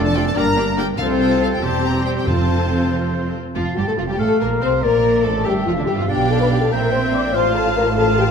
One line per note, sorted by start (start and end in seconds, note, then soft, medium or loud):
0.00 0.28 F1 medium
0.00 0.28 F2 medium
0.00 0.34 A3 medium
0.00 0.33 D4 medium
0.00 0.83 D4 medium
0.00 0.38 A4 medium
0.00 0.34 D5 medium
0.06 0.15 A5 medium
0.15 0.23 A3 medium
0.15 0.23 F4 soft
0.15 0.24 A4 medium
0.15 0.24 D5 medium
0.15 0.25 G5 medium
0.26 0.35 A5 medium
0.34 0.91 G1 medium
0.34 0.91 G2 medium
0.34 0.81 A#3 medium
0.34 0.44 A#3 medium
0.34 0.81 D4 medium
0.34 0.43 D4 medium
0.34 0.43 G4 medium
0.34 0.99 A#4 medium
0.34 0.82 A#4 medium
0.34 0.44 D5 medium
0.34 0.77 A#5 medium
0.56 0.64 A#3 medium
0.56 0.64 D4 medium
0.56 0.65 G4 medium
0.56 0.65 D5 medium
0.76 0.85 A#3 medium
0.76 0.85 D4 medium
0.76 0.85 G4 soft
0.76 0.84 D5 medium
0.76 0.86 G5 medium
0.97 1.58 C2 medium
0.97 1.58 C3 medium
0.97 1.58 A3 medium
0.97 1.57 C4 medium
0.97 1.58 C4 medium
0.97 1.57 F4 medium
0.97 1.57 A4 medium
0.97 1.65 A4 medium
0.97 1.57 C5 medium
0.97 1.61 C5 medium
0.97 1.06 F5 medium
1.20 1.30 G5 medium
1.32 1.41 A5 medium
1.43 1.47 F5 medium
1.54 1.63 G5 medium
1.61 2.27 E1 medium
1.61 2.27 E2 medium
1.61 2.26 G3 medium
1.61 2.25 C4 soft
1.61 2.25 C4 medium
1.61 2.25 C4 soft
1.61 2.25 G4 soft
1.61 2.27 G4 medium
1.61 2.25 C5 medium
1.61 2.26 C5 medium
1.61 2.27 C5 medium
1.61 1.84 A5 medium
1.86 2.06 A#5 medium
2.06 2.10 G5 medium
2.18 2.27 G5 medium
2.26 3.34 F1 medium
2.26 2.88 F2 medium
2.26 3.34 F2 medium
2.26 3.33 F3 medium
2.26 3.33 C4 soft
2.26 3.33 C4 medium
2.26 3.36 F4 soft
2.26 3.36 A4 medium
2.26 3.25 A4 medium
2.26 3.34 C5 medium
2.26 3.33 C5 soft
2.26 2.92 A5 medium
3.55 3.64 F1 medium
3.55 3.64 F2 medium
3.55 3.63 F3 medium
3.55 3.75 F4 medium
3.55 3.63 F4 medium
3.55 3.76 F4 medium
3.55 3.77 F5 medium
3.55 4.16 A5 medium
3.76 3.82 G1 medium
3.76 3.81 G2 soft
3.76 3.81 G3 medium
3.76 3.87 G4 medium
3.76 3.88 G4 soft
3.76 3.88 G4 medium
3.76 3.88 G5 soft
3.87 3.99 A2 soft
3.87 3.92 A3 soft
3.87 3.92 A4 soft
3.87 3.98 A4 medium
3.87 3.92 A4 medium
3.87 3.93 A5 medium
3.97 4.09 F1 medium
3.97 4.09 F2 soft
3.97 4.02 F3 medium
3.97 4.02 F4 medium
3.97 4.03 F4 medium
3.97 4.03 F4 soft
3.97 4.04 F5 soft
4.08 4.14 G2 soft
4.08 4.19 G3 medium
4.08 4.19 G4 soft
4.08 4.19 G4 medium
4.08 4.20 G4 soft
4.08 4.20 G5 soft
4.18 4.28 A1 medium
4.18 4.28 A2 medium
4.18 4.40 A3 medium
4.18 4.40 A4 medium
4.18 4.27 A4 medium
4.18 4.41 A4 medium
4.18 4.85 F5 medium
4.18 4.42 A5 medium
4.40 4.62 A#1 medium
4.40 4.62 A#2 medium
4.40 4.61 A#3 medium
4.40 4.62 A#4 medium
4.40 4.49 A#4 soft
4.40 4.49 A#4 medium
4.40 4.62 A#5 medium
4.60 4.83 C2 medium
4.60 4.83 C3 medium
4.60 4.68 C4 medium
4.60 4.70 C5 medium
4.60 4.82 C5 medium
4.60 4.83 C5 medium
4.60 4.83 C6 medium
4.82 5.25 A#1 medium
4.82 5.25 A#2 medium
4.82 5.24 A#3 medium
4.82 5.25 A#4 medium
4.82 5.24 A#4 medium
4.82 5.25 A#4 medium
4.82 5.47 D5 medium
4.82 5.25 A#5 medium
5.23 5.46 A1 medium
5.23 5.46 A2 medium
5.23 5.46 A3 medium
5.23 5.45 A4 medium
5.23 5.46 A4 medium
5.23 5.46 A5 medium
5.44 5.67 G1 medium
5.44 5.68 G2 medium
5.44 5.54 G3 medium
5.44 5.52 G4 medium
5.44 5.55 G4 medium
5.44 5.67 G4 medium
5.44 6.08 E5 medium
5.44 5.67 G5 medium
5.65 5.77 F1 medium
5.65 5.78 F2 medium
5.65 5.71 F3 medium
5.65 5.70 F4 medium
5.65 5.77 F4 medium
5.65 5.71 F4 medium
5.65 5.78 F5 soft
5.75 5.88 D2 medium
5.75 5.88 D3 soft
5.75 5.80 D4 medium
5.75 5.82 D4 medium
5.75 5.89 D5 medium
5.79 5.83 D4 medium
5.85 5.98 G1 medium
5.85 5.99 G3 medium
5.85 5.90 G4 medium
5.85 5.91 G4 medium
5.85 5.99 G4 medium
5.89 5.99 G2 medium
5.89 5.93 G5 medium
5.96 6.09 F3 medium
5.96 6.08 F4 medium
5.96 6.04 F4 soft
5.96 6.09 F5 soft
6.00 6.10 F2 soft
6.07 6.68 B1 medium
6.07 6.68 B2 medium
6.07 6.68 D4 medium
6.07 6.29 G4 medium
6.07 6.71 D5 medium
6.07 6.68 F5 medium
6.07 6.68 G5 medium
6.07 6.31 G5 medium
6.30 6.35 A4 medium
6.30 6.41 A5 medium
6.40 6.45 B4 medium
6.40 6.46 B5 medium
6.51 6.61 G4 medium
6.51 6.57 G5 medium
6.61 6.72 A4 medium
6.61 6.72 A5 medium
6.71 7.34 A#1 medium
6.71 7.34 A#2 medium
6.71 7.35 C4 medium
6.71 6.93 A#4 medium
6.71 7.35 E5 medium
6.71 7.33 G5 medium
6.71 7.36 G5 medium
6.71 6.78 A#5 medium
6.93 7.02 C5 medium
6.93 7.14 C6 medium
7.13 7.34 D5 medium
7.13 7.20 D6 medium
7.34 8.31 A1 medium
7.34 8.31 A2 medium
7.34 7.96 F4 medium
7.34 7.55 C5 medium
7.34 8.31 F5 medium
7.34 7.95 F5 medium
7.34 7.96 A5 medium
7.34 7.56 C6 medium
7.55 7.64 A4 medium
7.55 7.77 A5 medium
7.76 7.86 A#4 medium
7.76 7.83 A#5 medium
7.96 8.31 F4 medium
7.96 8.17 A4 loud
7.96 8.31 F5 medium
7.96 8.31 A5 medium
7.96 8.18 A5 medium
8.18 8.23 G4 medium
8.18 8.23 G5 medium